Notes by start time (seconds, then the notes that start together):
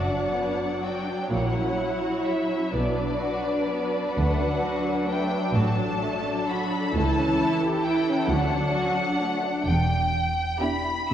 Already playing: F#1 F#2 F#3 D4 F#4 D5 F#5
0.10 D4
0.34 B3
0.59 D4
0.83 F#4 G5
1.06 D4
1.29 A#1 A#2 A#3 E4 C#5 F#5
1.53 C#4
1.78 E4
2.02 F#4
2.25 E4 E5
2.49 C#4
2.72 B1 B2 B3 D4 B4 D5
2.98 D4
3.20 F#4
3.44 D4
3.69 B3
3.92 D4
4.15 D2 F#3 A3 F#5
4.39 D4
4.63 F#4
4.85 D4
5.07 A3 G5
5.32 D4
5.54 A1 A2 F#4 A4 A5
5.76 D4
6.02 A3
6.25 D4
6.49 F#4 B5
6.72 D4
6.95 C#2 E3 A3 E4 A5
7.19 C#4
7.41 E4
7.63 G4
7.84 E4 G5
8.09 C#4
8.28 D2 F#3 A3 D4 F#5
8.51 D4
8.75 F#4
8.98 D4
9.21 A3
9.44 D4
9.65 E1 E2 G5
10.61 B3 D4 E4 G4 B5
11.11 E6